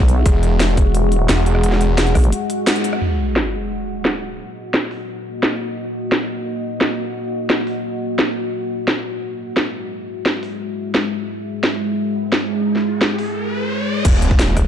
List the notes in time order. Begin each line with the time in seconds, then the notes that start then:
Already playing: B1 G#3 F#4 E5
0.08 closed hi-hat
0.26 E1 F#5, kick, closed hi-hat
0.43 closed hi-hat
0.60 snare, closed hi-hat
0.77 E1, kick, closed hi-hat
0.95 closed hi-hat
1.12 closed hi-hat
1.29 E1, snare, closed hi-hat
1.46 closed hi-hat
1.55 cross-stick
1.64 closed hi-hat
1.72 snare
1.81 closed hi-hat
1.98 snare, closed hi-hat
2.07 closed hi-hat
2.15 B1, kick, cross-stick, open hi-hat
2.24 closed hi-hat
2.32 closed hi-hat
2.50 closed hi-hat
2.67 snare, closed hi-hat
2.76 closed hi-hat
2.84 closed hi-hat
2.93 cross-stick
3.01 A#3 F#4 D#5, crash, sub drop
3.36 snare
4.05 snare
4.74 snare
4.91 open hi-hat
5.43 snare
6.12 snare
6.81 snare
7.50 snare
7.67 open hi-hat
8.19 snare
8.53 G#3 E5
8.88 snare
9.57 snare
10.26 snare
10.43 open hi-hat
10.95 snare
11.29 G#4, riser
11.63 snare
12.32 snare
12.76 snare
13.01 snare
13.19 open hi-hat
14.05 D#1 A#3 F#4 D#5, kick, closed hi-hat, crash, sub drop
14.22 closed hi-hat
14.31 kick
14.39 snare, closed hi-hat
14.57 D#1, kick, cross-stick, closed hi-hat